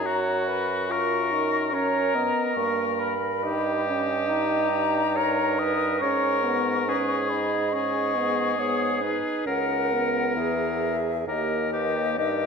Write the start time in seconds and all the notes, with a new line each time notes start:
Already playing: F#2 A#5
0.06 F#4 C#5
0.47 B4 B5
0.90 F4 A#4 C#6
1.32 D#4
1.73 C#4 A#4 C#5 A#5
2.15 B3 D#5
2.55 G2 A#3 A#4 C#6
3.00 B5
3.43 D#4 G4 D#5
3.86 C#4
4.29 D#4 A#5
4.72 D#4
5.16 A#4 C#5
5.59 B4 D#6
6.00 G#2 C#4 A#4 C#5 C#6
6.44 B3
6.88 C#4 G#4 B4
7.30 D#4 D#5 B5
7.72 C#4 G#4 C#6
8.15 B3
8.58 B3 C#5 D#6
9.02 D#4 B4
9.46 C#2 C#4 A#4 F#5
9.92 B3
10.37 E2 G#4 E5
11.27 D#2 A#3 G4 A#4 D#5
11.73 G4 B4
12.18 G2 D#4 G4 A#4